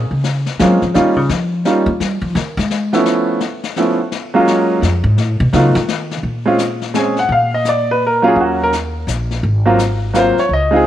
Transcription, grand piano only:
0.59 0.80 G#3 medium
0.59 0.80 A#3 soft
0.59 0.80 C4 soft
0.59 0.80 C#4 soft
0.59 0.81 F4 medium
0.94 1.15 G3 medium
0.94 1.15 A#3 soft
0.94 1.15 C#4 medium
0.94 1.15 D#4 medium
0.94 1.16 F4 medium
1.65 1.86 G3 medium
1.65 1.86 A#3 soft
1.65 1.86 C#4 soft
1.65 1.86 D#4 soft
1.65 1.87 F4 medium
2.93 3.39 F3 medium
2.93 3.39 A3 medium
2.93 3.39 B3 medium
2.93 3.39 C#4 medium
2.93 3.39 E4 medium
3.77 3.97 F3 medium
3.77 3.97 A3 soft
3.77 3.98 B3 soft
3.77 3.98 C#4 soft
3.77 3.98 E4 medium
4.34 4.80 F#3 medium
4.34 4.80 G#3 medium
4.34 4.80 A#3 medium
4.34 4.80 C#4 medium
4.34 4.81 F4 medium
5.53 5.73 F#3 soft
5.53 5.74 A3 soft
5.53 5.74 B3 soft
5.53 5.74 D#4 medium
5.53 5.74 F4 medium
6.46 6.57 G#3 medium
6.46 6.58 C4 medium
6.46 6.58 C#4 medium
6.46 6.58 F4 medium
6.94 7.15 G#3 medium
6.94 7.15 C4 soft
6.94 7.15 C#4 soft
6.94 7.16 G#4 medium
6.94 7.18 G#5 medium
7.19 7.30 F#5 medium
7.32 7.53 F5 medium
7.54 7.66 D#5 medium
7.69 7.89 D5 medium
7.91 8.02 B4 medium
8.07 8.26 A#4 medium
8.22 8.69 F#3 medium
8.22 8.69 A#3 medium
8.22 8.69 C#4 medium
8.22 8.35 F4 medium
8.27 8.38 G#4 medium
8.36 8.38 F4 soft
8.41 8.61 F#4 medium
8.63 8.70 A#4 medium
9.65 9.77 F#3 medium
9.65 9.77 A#3 medium
9.65 9.78 C4 medium
9.65 9.78 F4 medium
10.13 10.34 F#3 medium
10.13 10.34 A#3 medium
10.13 10.35 C4 soft
10.13 10.35 F4 medium
10.13 10.17 B4 soft
10.18 10.38 C5 medium
10.39 10.51 C#5 medium
10.53 10.74 D#5 medium
10.71 10.83 G#3 medium
10.71 10.84 C4 medium
10.71 10.84 D#4 medium
10.71 10.84 F4 medium
10.76 10.87 G#4 medium

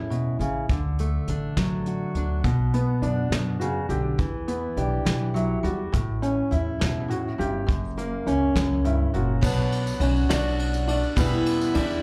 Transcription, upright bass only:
0.00 0.28 E2 medium
0.39 0.63 A1 medium
0.70 1.16 D2 medium
1.28 1.51 A1 medium
1.57 2.04 A1 medium
2.15 2.38 D2 medium
2.45 2.91 B1 medium
3.02 3.25 F#2 medium
3.30 3.77 F#2 medium
3.89 4.13 B1 medium
4.19 4.65 E2 medium
4.77 5.00 B1 medium
5.06 5.53 B1 medium
5.64 5.87 E2 medium
5.94 6.41 A1 medium
6.52 6.75 E2 medium
6.81 7.28 E2 medium
7.39 7.63 G1 medium
7.69 8.15 F#1 medium
8.26 8.50 C#2 medium
8.56 9.03 C#2 medium
9.14 9.37 F#1 medium
9.43 9.89 B1 medium
10.00 10.24 B1 medium
10.29 11.00 B1 medium
11.17 11.64 E2 medium
11.75 11.98 E2 loud

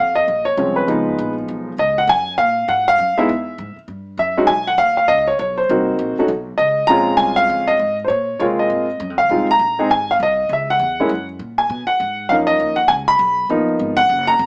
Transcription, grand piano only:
0.00 0.14 F5 medium
0.15 0.44 D#5 medium
0.45 0.77 C#5 medium
0.57 0.86 F3 medium
0.57 0.86 G#3 medium
0.57 0.88 C4 medium
0.57 0.88 C#4 medium
0.76 1.33 B4 medium
0.87 1.71 F3 medium
0.87 1.71 G#3 medium
0.87 1.71 B3 medium
0.87 1.72 D#4 medium
1.79 1.96 D#5 medium
1.98 2.08 F#5 medium
2.09 2.37 G#5 loud
2.38 2.69 F5 medium
2.69 2.88 F#5 medium
2.88 3.19 F5 loud
3.18 3.28 G#3 medium
3.18 3.28 B3 medium
3.18 3.28 D#4 medium
3.18 3.28 E4 medium
3.18 3.74 E5 medium
4.19 4.50 E5 medium
4.37 4.48 G#3 medium
4.37 4.48 C#4 medium
4.37 4.48 D#4 medium
4.37 4.48 F#4 medium
4.47 4.67 G#5 loud
4.67 4.78 F#5 medium
4.78 4.96 F5 medium
4.97 5.09 F5 medium
5.08 5.26 D#5 medium
5.27 5.38 C#5 medium
5.39 5.59 C#5 medium
5.58 6.14 C5 medium
5.70 6.15 A#3 medium
5.70 6.15 C4 medium
5.70 6.15 D#4 medium
5.70 6.15 F#4 medium
6.19 6.28 A3 medium
6.19 6.29 C#4 medium
6.19 6.29 D#4 medium
6.19 6.29 F#4 medium
6.58 6.86 D#5 medium
6.87 7.73 G#3 medium
6.87 7.73 C4 medium
6.87 7.73 C#4 medium
6.87 7.73 F4 medium
6.87 7.16 A#5 loud
7.17 7.38 G#5 medium
7.36 7.68 F5 loud
7.68 7.96 D#5 medium
8.04 8.09 C5 medium
8.04 8.38 C#5 medium
8.40 8.85 G#3 medium
8.40 8.85 A#3 medium
8.40 8.85 C4 medium
8.40 8.85 F4 medium
8.40 8.45 C#5 medium
8.59 9.15 D#5 medium
9.18 9.46 F5 medium
9.31 9.47 G#3 medium
9.31 9.47 C4 soft
9.31 9.47 D#4 medium
9.31 9.47 F4 medium
9.51 9.88 A#5 loud
9.79 9.89 G#3 medium
9.79 9.89 C4 medium
9.79 9.89 D#4 medium
9.79 9.89 G#4 medium
9.91 10.10 G#5 medium
10.11 10.15 F5 medium
10.23 10.49 D#5 medium
10.53 10.71 E5 medium
10.70 11.25 F#5 medium
11.00 11.09 G#3 medium
11.00 11.09 A#3 medium
11.00 11.09 C#4 medium
11.00 11.10 E4 medium
11.58 11.86 G#5 medium
11.87 12.30 F#5 medium
12.29 12.75 F3 soft
12.29 12.75 A#3 soft
12.29 12.75 C#4 soft
12.29 12.75 D#4 medium
12.29 12.34 F5 medium
12.47 12.75 D#5 medium
12.76 12.89 F#5 medium
12.88 12.93 G#5 loud
13.08 13.46 B5 medium
13.50 13.95 F3 medium
13.50 13.95 A#3 medium
13.50 13.95 B3 medium
13.50 13.95 D#4 medium
13.97 14.28 F#5 loud
14.27 14.46 A#5 loud

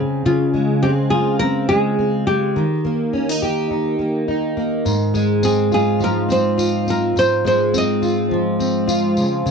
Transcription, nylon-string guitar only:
0.26 0.85 F4 medium
0.83 0.90 G4 medium
1.10 1.39 G#4 medium
1.39 1.67 A#4 loud
1.69 2.26 G#4 medium
2.27 4.24 G4 medium
5.45 5.73 G#4 medium
5.74 6.03 G#4 medium
6.04 6.29 A#4 medium
6.32 6.90 C5 medium
6.90 7.15 A#4 medium
7.19 7.46 C5 medium
7.47 7.75 C5 medium
7.78 9.15 D#5 medium

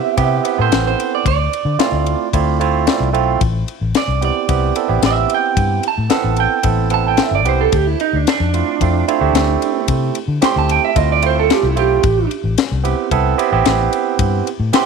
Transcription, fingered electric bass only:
0.18 0.39 C3 medium
0.59 0.69 A2 medium
0.72 0.93 A1 loud
1.25 1.47 D2 loud
1.65 1.76 D3 medium
1.78 muted fingered electric bass stroke soft
1.92 2.14 D2 medium
2.34 2.87 D2 loud
3.00 3.14 C2 medium
3.14 3.35 B1 medium
3.41 3.63 A1 loud
3.81 3.92 A1 medium
4.08 4.29 C2 medium
4.49 4.70 C2 medium
4.89 5.00 A1 medium
5.02 5.24 A1 loud
5.57 5.78 G2 medium
5.98 6.08 A2 medium
6.11 muted fingered electric bass stroke soft
6.24 6.46 A1 medium
6.65 7.18 A1 medium
7.31 7.45 G1 medium
7.45 7.66 C2 medium
7.72 7.94 D2 loud
8.13 8.24 D2 medium
8.40 8.61 F2 medium
8.81 9.02 F2 medium
9.21 9.32 D2 medium
9.33 9.55 D2 loud
9.88 10.10 C3 loud
10.28 10.39 D3 medium
10.42 muted fingered electric bass stroke soft
10.56 10.77 D2 loud
10.96 11.49 D2 loud
11.63 11.76 C2 medium
11.76 11.98 B1 medium
12.04 12.25 A1 loud
12.44 12.55 A1 medium
12.72 12.93 C2 medium
13.11 13.33 C2 medium
13.52 13.63 A1 loud
13.66 13.87 A1 loud
14.19 14.40 G2 loud
14.60 14.70 A2 medium
14.73 muted fingered electric bass stroke soft

